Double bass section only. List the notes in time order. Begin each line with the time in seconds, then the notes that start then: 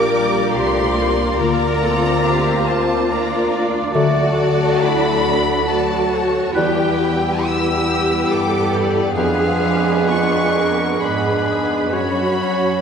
Already playing: A#1
0.52 C2
1.39 D2
3.93 D2
6.54 E2
8.31 G2
9.14 F2
10.99 G#2
11.92 F#2